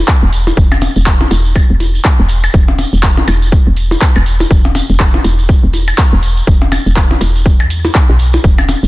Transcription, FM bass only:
0.22 0.51 E1 loud
0.57 0.88 E1 loud
0.96 1.25 E1 medium
1.31 1.62 E1 loud
1.70 1.99 E1 medium
2.19 2.48 E1 loud
2.54 2.85 E1 loud
2.93 3.22 E1 medium
3.28 3.59 E1 loud
3.67 3.96 E1 medium
4.16 4.45 E1 loud
4.51 4.81 E1 loud
4.90 5.19 E1 medium
5.24 5.55 E1 loud
5.63 5.92 E1 medium
6.13 6.42 E1 loud
6.47 6.78 E1 loud
6.86 7.15 E1 medium
7.21 7.62 E1 loud
7.60 7.89 E2 medium
8.09 8.38 B1 medium
8.44 8.75 E1 loud
8.83 8.88 E1 medium

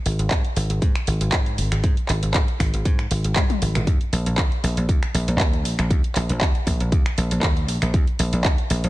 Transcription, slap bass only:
0.06 0.16 G#1 medium
0.19 0.28 G#1 medium
0.56 0.67 G#1 medium
0.70 0.79 G#1 medium
0.82 0.92 G#2 medium
1.07 1.18 G#1 medium
1.21 1.30 G#1 medium
1.58 1.69 G#1 loud
1.72 1.81 G#1 medium
1.84 1.94 G#2 medium
2.09 2.20 G#1 medium
2.23 2.32 G#1 loud
2.34 2.45 G#2 medium
2.60 2.70 G#1 medium
2.74 2.83 G#1 loud
2.85 3.06 G#2 medium
3.11 3.21 G#1 medium
3.24 3.34 G#1 medium
3.62 3.72 G#1 medium
3.75 3.84 G#1 medium
4.12 4.23 A#1 medium
4.26 4.35 A#1 medium
4.63 4.74 A#1 medium
4.77 4.86 A#1 medium
5.14 5.25 A#1 medium
5.28 5.37 A#1 medium
5.40 5.65 D#2 medium
5.65 5.76 A#1 medium
5.79 5.88 A#1 medium
5.90 6.01 D#2 medium
6.16 6.27 A#1 medium
6.30 6.39 A#1 medium
6.41 6.52 D#2 medium
6.67 6.77 A#1 medium
6.80 6.90 A#1 loud
6.92 7.03 D#2 medium
7.18 7.28 A#1 medium
7.31 7.41 A#1 medium
7.43 7.69 D#2 medium
7.69 7.79 A#1 medium
7.82 7.91 A#1 medium
7.94 8.04 D#2 medium
8.19 8.30 A#1 medium
8.33 8.42 A#1 loud
8.45 8.55 D#2 medium
8.70 8.81 A#1 medium
8.84 8.89 A#1 medium

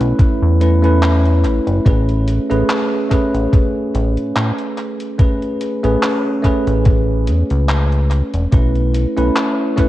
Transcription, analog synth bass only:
0.01 0.14 B1 medium
0.42 1.46 E2 loud
1.45 1.60 A1 medium
1.67 1.80 F#1 loud
1.86 2.39 A1 loud
2.50 2.63 A1 medium
3.34 3.47 A1 medium
3.94 4.17 A1 loud
4.18 4.33 A2 soft
4.36 4.52 A2 medium
5.84 5.97 A1 medium
6.67 7.29 A1 medium
7.28 7.44 E2 medium
7.51 8.23 C#2 loud
8.34 8.47 E1 medium
8.53 9.06 B1 loud
9.18 9.30 B1 medium

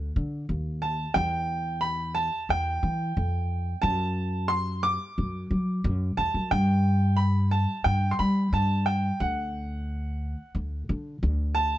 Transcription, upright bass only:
0.16 0.44 D3 loud
0.49 1.05 D#2 medium
1.16 2.28 E2 loud
2.49 2.77 E2 medium
2.83 3.11 E3 medium
3.17 3.72 F2 loud
3.83 4.95 F#2 loud
5.18 5.45 F#2 medium
5.51 5.78 F#3 medium
5.84 6.12 F#2 loud
6.18 6.32 E2 medium
6.34 6.49 F#2 medium
6.52 7.64 G2 loud
7.85 8.13 G2 medium
8.19 8.47 G3 loud
8.53 9.09 G2 loud
9.20 10.33 D2 loud
10.55 10.83 D2 medium
10.89 11.17 D3 loud
11.23 11.78 D2 loud

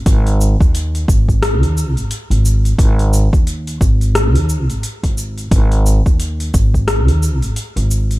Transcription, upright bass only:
0.06 0.54 G#1 loud
0.60 1.04 D#2 medium
1.08 1.62 G#1 medium
1.62 1.96 D#2 medium
1.96 2.08 G#1 medium
2.30 2.74 G#1 medium
2.78 3.27 G#1 loud
3.81 4.35 G#1 medium
4.35 4.69 D#2 medium
4.69 4.80 G#1 loud
5.03 5.47 G#1 medium
5.51 5.99 G#1 loud
6.54 7.08 G#1 medium
7.08 7.42 D#2 medium
7.42 7.53 G#1 loud
7.76 8.19 G#1 medium

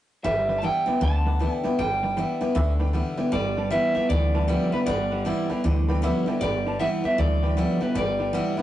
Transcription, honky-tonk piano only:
0.24 0.39 B4 medium
0.24 0.39 D5 medium
0.24 0.39 G5 loud
0.49 0.57 B4 medium
0.49 0.58 D5 medium
0.49 0.58 G5 medium
0.64 0.78 B4 medium
0.64 0.78 D5 medium
0.64 0.78 E5 medium
0.87 0.96 B4 medium
0.87 0.96 D5 medium
0.87 0.96 G5 medium
1.02 1.16 B4 medium
1.02 1.16 D5 medium
1.02 1.17 G5 loud
1.26 1.35 B4 medium
1.26 1.35 D5 medium
1.26 1.35 F#5 medium
1.40 1.55 B4 medium
1.40 1.55 D5 medium
1.40 1.55 G5 medium
1.64 1.73 B4 medium
1.64 1.73 D5 medium
1.64 1.73 G5 medium
1.78 1.93 B4 medium
1.78 1.93 D5 medium
1.78 1.94 G5 loud
2.03 2.11 B4 medium
2.03 2.12 D5 medium
2.03 2.12 G5 medium
2.16 2.32 B4 medium
2.16 2.32 D5 medium
2.16 2.32 G5 medium
2.41 2.50 B4 medium
2.41 2.50 D5 medium
2.41 2.50 G5 medium
2.55 2.70 B4 loud
2.55 2.70 D5 loud
2.55 2.71 E5 loud
2.79 2.88 B4 medium
2.79 2.88 D5 medium
2.79 2.89 G5 medium
2.93 3.08 B4 medium
2.93 3.09 D5 medium
2.93 3.09 G5 medium
3.17 3.27 B4 medium
3.17 3.27 D5 medium
3.17 3.27 G5 medium
3.32 3.47 B4 medium
3.32 3.47 D5 medium
3.32 3.47 G5 loud
3.57 3.66 B4 medium
3.57 3.66 D5 medium
3.57 3.66 A5 medium
3.71 3.86 B4 medium
3.71 3.86 D5 medium
3.71 3.86 G5 medium
3.96 4.04 B4 medium
3.96 4.04 D5 medium
3.96 4.05 G5 medium
4.10 4.25 B4 medium
4.10 4.25 D5 medium
4.10 4.25 G5 medium
4.34 4.43 B4 medium
4.34 4.43 D5 medium
4.34 4.43 A5 loud
4.48 4.63 B4 medium
4.48 4.63 D5 medium
4.48 4.63 G5 loud
4.73 4.82 B4 medium
4.73 4.82 D5 medium
4.73 4.82 G5 medium
4.87 5.02 B4 medium
4.87 5.02 D5 medium
4.87 5.02 F#5 loud
5.11 5.20 B4 medium
5.11 5.20 D5 medium
5.11 5.20 F#5 medium
5.25 5.40 B4 medium
5.25 5.41 D5 medium
5.25 5.41 G5 medium
5.50 5.58 B4 medium
5.50 5.59 D5 medium
5.50 5.59 G5 medium
5.64 5.79 B4 medium
5.64 5.79 D5 medium
5.64 5.79 G5 medium
5.88 5.97 B4 loud
5.88 5.97 D5 loud
5.88 5.98 G5 loud
6.03 6.18 B4 loud
6.03 6.18 D5 loud
6.03 6.18 E5 loud
6.27 6.36 B4 medium
6.27 6.36 D5 medium
6.27 6.36 G5 loud
6.42 6.56 B4 loud
6.42 6.56 D5 medium
6.42 6.57 G5 loud
6.66 6.75 B4 medium
6.66 6.75 D5 medium
6.66 6.75 A5 medium
6.80 6.95 B4 medium
6.80 6.95 D5 medium
6.80 6.95 G5 medium
7.04 7.13 B4 medium
7.04 7.13 D5 medium
7.04 7.13 G5 medium
7.18 7.33 B4 medium
7.18 7.33 D5 medium
7.18 7.34 E5 medium
7.43 7.51 B4 medium
7.43 7.51 D5 medium
7.43 7.52 G5 loud
7.57 7.71 B4 medium
7.57 7.72 D5 medium
7.57 7.72 G5 loud
7.81 7.90 B4 medium
7.81 7.90 D5 medium
7.81 7.90 G5 medium
7.95 8.10 B4 medium
7.95 8.10 D5 medium
7.95 8.10 G5 loud
8.19 8.28 B4 medium
8.19 8.28 D5 medium
8.19 8.28 G5 medium
8.33 8.48 B4 medium
8.33 8.48 D5 medium
8.33 8.49 G5 medium
8.57 8.62 B4 medium
8.57 8.62 D5 medium
8.57 8.62 F#5 loud

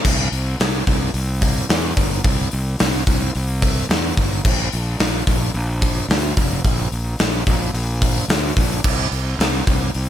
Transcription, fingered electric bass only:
0.05 0.27 C2 loud
0.32 0.54 C2 medium
0.60 0.82 C2 medium
0.88 1.10 C2 medium
1.14 1.59 C2 loud
1.69 1.92 E2 loud
1.97 2.19 G1 medium
2.25 2.47 C2 medium
2.53 2.75 C2 medium
2.81 3.03 C2 medium
3.07 3.29 C2 medium
3.35 3.80 C2 loud
3.89 4.12 E2 loud
4.17 4.39 G1 medium
4.45 4.67 A#1 loud
4.73 4.95 A#1 medium
5.00 5.22 A#1 loud
5.28 5.50 A#1 medium
5.54 5.99 A#1 loud
6.09 6.31 D2 loud
6.37 6.59 F1 medium
6.64 6.87 A#1 medium
6.92 7.14 A#1 medium
7.20 7.42 A#1 medium
7.47 7.69 A#1 medium
7.74 8.19 A#1 loud
8.28 8.51 D2 medium
8.57 8.79 A#1 medium
8.84 9.07 C2 loud
9.11 9.34 C2 medium
9.39 9.61 C2 loud
9.67 9.90 C2 medium
9.95 10.09 C2 loud

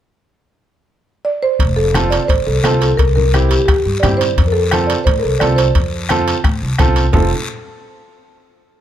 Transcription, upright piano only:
1.95 2.19 C4 medium
1.95 2.19 F4 medium
1.95 2.20 A4 medium
2.65 2.89 C4 medium
2.65 2.89 F4 medium
2.65 2.89 A4 medium
3.34 3.58 C4 medium
3.34 3.58 E4 medium
3.34 3.58 G4 medium
4.03 4.27 C4 medium
4.03 4.28 E4 medium
4.03 4.28 G4 medium
4.72 4.96 C4 medium
4.72 4.96 F4 medium
4.72 4.97 A4 medium
5.41 5.65 C4 medium
5.41 5.66 F4 medium
5.41 5.66 A4 medium
6.10 6.34 C4 medium
6.10 6.34 F4 medium
6.10 6.35 A4 medium
6.79 7.03 C4 medium
6.79 7.03 F4 medium
6.79 7.04 A4 medium
7.14 7.30 C4 medium
7.14 7.30 F4 medium
7.14 7.30 A4 medium

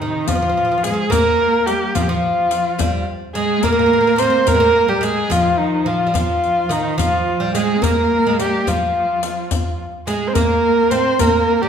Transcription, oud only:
0.02 0.28 D#3 medium
0.28 0.34 F3 medium
0.35 0.41 F3 medium
0.42 0.48 F3 soft
0.49 0.56 F3 soft
0.57 0.63 F3 soft
0.65 0.70 F3 soft
0.72 0.76 F3 soft
0.78 0.86 F3 soft
0.87 0.92 F3 medium
0.94 1.02 F3 medium
1.10 1.97 A#3 medium
1.95 2.08 F3 medium
2.09 2.81 F3 medium
2.79 3.05 G3 medium
3.35 3.64 G#3 medium
3.65 3.71 A#3 medium
3.72 3.78 A#3 medium
3.79 3.85 A#3 medium
3.86 3.92 A#3 medium
3.93 3.99 A#3 medium
4.01 4.06 A#3 medium
4.07 4.15 A#3 medium
4.16 4.21 A#3 medium
4.22 4.29 A#3 medium
4.30 4.38 A#3 medium
4.47 4.54 A#3 medium
4.54 4.60 G#3 medium
4.60 4.88 A#3 medium
4.88 5.00 G3 medium
5.01 5.31 G#3 medium
5.30 5.85 F3 medium
5.86 6.08 F3 medium
6.07 6.14 G3 medium
6.14 6.67 F3 medium
6.69 6.97 D#3 medium
6.98 7.42 F3 medium
7.40 7.54 G3 medium
7.55 7.81 G#3 medium
7.82 8.26 A#3 medium
8.27 8.39 G#3 medium
8.39 8.68 G3 medium
8.67 9.75 F3 medium
10.07 10.35 G#3 medium
10.35 10.93 A#3 medium
10.91 11.20 C4 medium
11.21 11.62 A#3 medium
11.63 11.69 G3 medium

